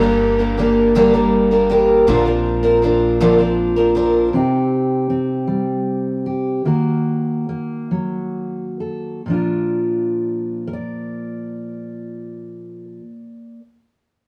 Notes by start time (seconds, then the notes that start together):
Already playing: G1 G2 A#3 D4 A#4
0.01 G3 A#3 D4 A#4
0.39 G3 A#3 D4 A#4
0.58 G3 A#3 D4 A#4
0.95 G2 D3 G3 A#3 D4 A#4
1.13 G3 A#3 D4 A#4
1.51 G3 A#3 D4 A#4
1.70 G3 A#3 D4 G4 A#4
2.07 A#1 A#2 D3 F3 C4 D4 F4 A#4
2.26 F3 C4 D4 A#4
2.63 F3 C4 D4 A#4
2.82 F3 C4 D4 A#4
3.20 A#2 D3 F3 C4 D4 A#4
3.38 F3 C4 D4 A#4
3.76 F3 C4 D4 A#4
3.95 F3 C4 D4 A#4
4.33 C3 C4 D#4 G4
5.10 C4
5.47 G3
6.26 G4
6.65 D#3 A#3 F#4 A#4
7.49 A#3
7.91 F#3
8.80 A4
9.26 A#2 F3
9.30 D4 F4 A#4
10.67 A#4
10.73 D5